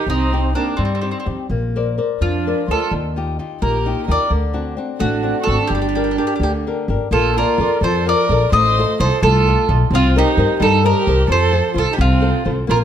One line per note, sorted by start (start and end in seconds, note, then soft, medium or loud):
0.06 0.53 C2 medium
0.06 0.54 C3 soft
0.06 0.53 D#4 medium
0.11 0.54 C4 medium
0.32 0.54 C4 soft
0.32 0.54 D#4 soft
0.32 0.55 G4 soft
0.55 0.78 A#3 soft
0.55 0.94 C4 soft
0.55 0.77 D4 medium
0.55 0.94 D#4 soft
0.55 0.95 G4 soft
0.77 1.10 G2 medium
0.77 1.25 G3 soft
0.77 1.29 G3 soft
0.77 0.84 C4 medium
0.85 0.93 C4 soft
0.95 1.00 C4 soft
1.01 1.09 C4 soft
1.01 1.25 C4 soft
1.01 1.25 D#4 soft
1.01 1.25 G4 soft
1.11 1.18 C4 soft
1.20 1.26 C4 soft
1.26 1.34 F2 medium
1.26 1.45 C4 soft
1.26 1.45 D#4 soft
1.26 1.45 G4 soft
1.50 1.96 A#1 medium
1.50 1.97 A#3 soft
1.76 1.97 A#4 soft
1.76 1.97 C5 soft
1.76 1.97 D5 soft
1.98 2.37 A#4 soft
1.98 2.37 C5 soft
1.98 2.37 D5 soft
2.21 2.52 F2 medium
2.21 2.68 F3 soft
2.21 2.66 D4 soft
2.21 2.71 F4 medium
2.47 2.69 A#4 soft
2.47 2.69 C5 soft
2.47 2.70 D5 soft
2.68 2.76 D2 medium
2.68 2.91 F4 medium
2.68 2.92 A4 medium
2.68 2.88 A#4 soft
2.68 2.88 C5 soft
2.68 2.89 D5 soft
2.91 3.37 D#2 medium
2.91 3.38 D#3 soft
3.16 3.38 D#4 soft
3.16 3.38 F4 soft
3.16 3.39 G4 soft
3.39 3.77 D#4 soft
3.39 3.77 F4 soft
3.39 3.77 G4 soft
3.61 3.92 A#1 medium
3.61 4.07 A#3 medium
3.61 4.05 G4 soft
3.61 4.05 A#4 medium
3.86 4.07 D#4 soft
3.86 4.07 F4 soft
3.86 4.08 G4 soft
4.07 4.16 D#2 medium
4.07 4.26 D#4 soft
4.07 4.26 F4 soft
4.07 4.27 G4 soft
4.07 4.29 A#4 medium
4.11 4.31 D5 medium
4.30 4.75 D2 medium
4.30 4.76 D3 soft
4.53 4.76 C4 soft
4.53 4.77 D4 soft
4.53 4.77 F#4 soft
4.77 5.14 C4 soft
4.77 5.15 D4 soft
4.77 5.15 F#4 soft
4.98 5.31 A1 medium
4.98 5.45 A3 soft
4.98 5.42 D4 soft
4.98 5.43 F#4 medium
5.23 5.46 C4 soft
5.23 5.47 D4 soft
5.23 5.47 F#4 soft
5.42 5.63 F#4 medium
5.42 5.68 A4 medium
5.47 5.54 G#1 medium
5.47 5.65 C4 soft
5.47 5.66 D4 soft
5.47 5.66 F#4 soft
5.64 6.58 D4 medium
5.64 5.74 G4 medium
5.70 6.16 G1 medium
5.70 6.16 G3 soft
5.75 5.80 G4 soft
5.82 5.87 G4 soft
5.89 5.94 G4 soft
5.95 6.16 D4 soft
5.95 6.03 G4 soft
5.95 6.17 G4 soft
5.95 6.17 A#4 soft
6.04 6.10 G4 soft
6.11 6.17 G4 soft
6.17 6.55 D4 soft
6.17 6.56 G4 soft
6.17 6.26 G4 soft
6.17 6.56 A#4 soft
6.27 6.34 G4 medium
6.36 6.42 G4 soft
6.40 6.71 D2 medium
6.40 6.87 D3 soft
6.40 6.51 G4 medium
6.67 6.88 D4 soft
6.67 6.88 G4 soft
6.67 6.89 A#4 soft
6.88 6.96 G1 medium
6.88 7.07 D4 soft
6.88 7.07 G4 soft
6.88 7.07 A#4 soft
7.11 7.42 A#1 medium
7.11 7.58 A#3 medium
7.11 7.35 F4 medium
7.11 7.35 A4 medium
7.36 7.78 F4 medium
7.36 7.59 F4 soft
7.36 7.79 A#4 medium
7.36 7.59 A#4 soft
7.36 7.59 D5 medium
7.58 7.66 F2 medium
7.58 7.97 A4 soft
7.58 7.98 A#4 soft
7.58 7.98 D5 soft
7.81 8.12 F2 medium
7.81 8.29 F3 medium
7.81 8.06 A4 medium
7.81 8.06 C5 medium
8.06 8.43 F4 soft
8.06 8.29 A#4 soft
8.06 8.50 A#4 medium
8.06 8.30 D5 soft
8.06 8.53 D5 medium
8.29 8.44 A#1 medium
8.29 8.48 A4 soft
8.29 8.48 A#4 soft
8.29 8.49 D5 medium
8.52 8.83 A1 medium
8.52 8.98 A3 medium
8.52 8.96 C5 medium
8.52 8.97 D#5 medium
8.78 9.00 F4 soft
8.78 9.00 A4 soft
8.78 9.00 D#5 medium
9.00 9.07 C2 medium
9.00 9.38 F4 soft
9.00 9.38 A4 soft
9.00 9.22 A4 medium
9.00 9.21 C5 medium
9.00 9.38 D#5 medium
9.22 9.53 C2 medium
9.22 9.68 A3 medium
9.22 9.72 F4 medium
9.22 9.71 A4 medium
9.47 9.67 F4 soft
9.47 9.68 A4 soft
9.47 9.69 D#5 soft
9.68 9.83 B1 medium
9.68 9.86 F4 soft
9.68 9.87 A4 soft
9.68 9.87 D#5 soft
9.90 10.21 C2 medium
9.90 10.14 C4 medium
9.90 10.38 C4 medium
9.95 10.18 F4 medium
10.16 10.58 D#4 medium
10.16 10.59 G4 medium
10.16 10.37 A#4 medium
10.16 10.37 C5 soft
10.16 10.38 D#5 medium
10.37 10.45 G2 medium
10.37 10.75 A#4 soft
10.37 10.76 C5 soft
10.37 10.77 D#5 soft
10.60 10.91 G2 medium
10.60 11.06 G3 medium
10.60 10.83 D#4 medium
10.60 10.84 A4 medium
10.84 11.28 G4 medium
10.84 11.07 A#4 soft
10.84 11.31 A#4 medium
10.84 11.07 C5 soft
10.84 11.07 D#5 soft
11.07 11.22 C2 medium
11.07 11.26 A#4 soft
11.07 11.26 C5 soft
11.07 11.26 D#5 medium
11.28 11.59 F2 medium
11.28 11.75 F3 medium
11.28 11.73 A4 medium
11.28 11.78 C5 medium
11.51 11.73 F4 soft
11.51 11.73 A4 soft
11.51 11.74 C5 medium
11.74 11.83 C2 medium
11.74 12.13 F4 soft
11.74 11.91 F4 medium
11.74 12.14 A4 soft
11.74 12.14 C5 soft
11.78 11.92 A4 medium
11.92 11.99 D#4 soft
11.92 12.00 G4 medium
11.97 12.30 C2 medium
11.97 12.45 C3 medium
11.97 12.50 C4 medium
11.97 12.50 F4 medium
12.21 12.44 F4 soft
12.21 12.44 A4 soft
12.21 12.44 C5 soft
12.45 12.61 C2 medium
12.45 12.64 F4 soft
12.45 12.64 A4 soft
12.45 12.65 C5 soft
12.67 12.84 A#1 medium
12.67 12.84 A#3 medium
12.67 12.81 F4 medium
12.67 12.77 A#4 medium